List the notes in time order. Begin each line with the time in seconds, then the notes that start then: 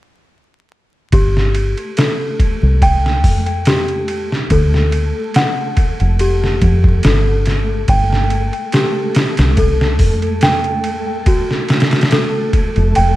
1.12 G1 A3 G4 A4, kick, ride
1.37 snare
1.55 ride
1.78 ride
1.97 A4, snare, ride
2.40 kick, ride
2.63 C2
2.82 G5, kick, ride
3.06 snare
3.24 F2, kick, open hi-hat
3.46 ride
3.65 G4, snare, ride
3.88 ride
4.08 ride
4.32 snare
4.50 D2 A4, kick, ride
4.74 snare
4.92 ride
5.34 F#5, snare, ride
5.77 kick, ride
6.00 F1, ride
6.19 G4, ride
6.44 snare
6.62 F2, kick, ride
6.84 kick
7.03 G1 A4, snare, ride
7.46 snare, ride
7.88 G1 G5, kick, ride
8.13 snare
8.30 ride
8.53 ride
8.72 G4, snare, ride
9.15 snare, ride
9.37 C2, snare, ride
9.57 A4, kick, ride
9.81 snare
9.99 F2, kick, open hi-hat
10.22 ride
10.41 G5, snare, ride
10.64 ride
10.84 ride
11.26 D2 F#4, kick, ride
11.51 snare
11.68 snare, ride
11.80 snare, ride
11.91 snare, ride
12.01 snare, ride
12.11 A4, snare, ride
12.53 kick, ride
12.76 F1, ride
12.95 F1 G5, ride